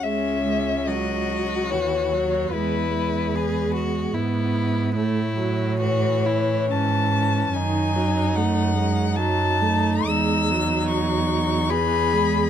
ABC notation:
X:1
M:3/4
L:1/8
Q:1/4=73
K:C#m
V:1 name="Violin"
e2 d2 c2 | B3 z3 | z2 c2 a2 | g2 f2 a2 |
e'2 c'2 b2 |]
V:2 name="Violin"
C2 F4 | E2 G F E2 | E2 F E C2 | D4 D2- |
D4 G2 |]
V:3 name="Viola" clef=bass
G, G, F,2 E, F, | G, G,3 B,2 | A, F, E,4 | D, F, A, G, F, A, |
G, F,3 E, G, |]
V:4 name="Cello" clef=bass
C,,4 D,,2 | E,,4 G,,2 | A,,4 G,,2 | F,,6 |
E,,6 |]